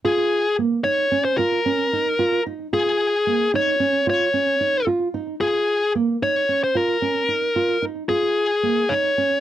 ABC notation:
X:1
M:5/8
L:1/16
Q:1/4=112
K:Db
V:1 name="Lead electric guitar"
A4 z2 d3 c | B8 z2 | A6 d4 | d6 z4 |
A4 z2 d3 c | B8 z2 | A6 d4 |]
V:2 name="Nylon-string guitar"
F4 B,2 E2 D2 | F2 D2 E2 F2 E2 | F4 B,2 E2 D2 | F2 D2 E2 F2 E2 |
F4 B,2 E2 D2 | F2 D2 E2 F2 E2 | F4 B,2 E2 D2 |]